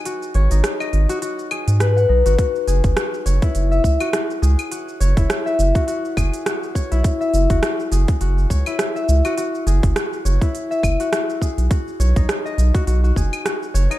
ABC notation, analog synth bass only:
X:1
M:4/4
L:1/16
Q:"Swing 16ths" 1/4=103
K:G#phr
V:1 name="Analog synth bass" clef=bass
z2 G,,, G,,, z2 G,,, z4 G,,3 B,,, G,,, | z2 F,,, F,,, z2 F,,, z F,,,2 C,, z3 C,, z | z2 F,,, F,,, z2 F,,, z3 F,,, z4 B,,, | z2 F,,, F,,, z2 F,,, z F,,,2 C,, z3 C,, z |
z2 F,,, F,,, z2 F,,, z3 F,,, z4 B,,, | z2 B,,, B,,, z2 B,,, z B,,,2 F,,, z3 F,,, z |]